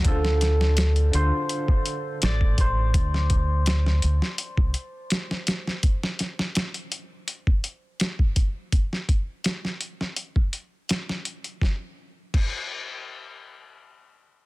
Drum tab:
CC |----------------|----------------|----------------|----------------|
HH |x-x-xxx-x-x-x-x-|x-x-x-x-x-x-x-x-|x-x-xxx-x-x-x-x-|x-x-x-x-x-x-x-xx|
SD |-oooo-------o---|-o--oo-o----oooo|-oooo-------o---|-o--oo-o----oo--|
BD |o--------o---oo-|o-o------o------|o--------o---oo-|o-o------o------|

CC |----x-----------|
HH |----------------|
SD |o---------------|
BD |o---o-----------|